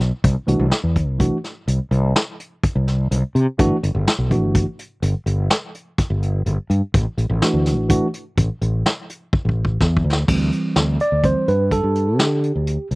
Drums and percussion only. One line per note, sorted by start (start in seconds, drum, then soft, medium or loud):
0.00 snare soft
0.00 closed hi-hat medium
0.24 kick loud
0.24 closed hi-hat loud
0.48 closed hi-hat medium
0.71 snare medium
0.71 closed hi-hat medium
0.96 kick medium
0.96 closed hi-hat medium
1.20 kick medium
1.20 closed hi-hat medium
1.44 snare soft
1.44 closed hi-hat medium
1.68 closed hi-hat medium
1.92 closed hi-hat medium
2.16 snare loud
2.16 closed hi-hat medium
2.40 closed hi-hat medium
2.63 kick loud
2.63 closed hi-hat medium
2.88 snare soft
2.88 closed hi-hat medium
3.11 closed hi-hat medium
3.35 closed hi-hat medium
3.59 kick loud
3.59 closed hi-hat medium
3.83 closed hi-hat medium
4.07 snare medium
4.07 closed hi-hat medium
4.31 kick medium
4.31 closed hi-hat medium
4.55 kick loud
4.55 closed hi-hat medium
4.79 closed hi-hat medium
5.03 closed hi-hat medium
5.27 closed hi-hat medium
5.50 snare loud
5.50 closed hi-hat medium
5.75 closed hi-hat medium
5.98 kick loud
5.98 snare soft
5.98 closed hi-hat medium
6.23 closed hi-hat medium
6.46 closed hi-hat medium
6.70 closed hi-hat medium
6.94 kick loud
6.94 closed hi-hat medium
7.18 closed hi-hat medium
7.42 snare medium
7.42 closed hi-hat medium
7.66 snare soft
7.66 closed hi-hat medium
7.90 kick loud
7.90 closed hi-hat medium
8.14 closed hi-hat medium
8.38 kick loud
8.38 closed hi-hat medium
8.62 closed hi-hat medium
8.86 snare loud
8.86 closed hi-hat medium
9.10 closed hi-hat medium
9.33 kick loud
9.49 kick medium
9.65 kick medium
9.81 kick loud
9.81 snare medium
9.97 kick medium
10.13 snare medium
10.28 kick loud
10.28 crash loud
10.52 closed hi-hat medium
10.76 snare medium
10.76 closed hi-hat medium
11.00 closed hi-hat medium
11.24 kick medium
11.24 closed hi-hat medium
11.48 closed hi-hat medium
11.71 kick medium
11.71 closed hi-hat medium
11.95 closed hi-hat medium
12.19 snare loud
12.19 closed hi-hat medium
12.44 closed hi-hat soft
12.67 closed hi-hat medium
12.91 closed hi-hat medium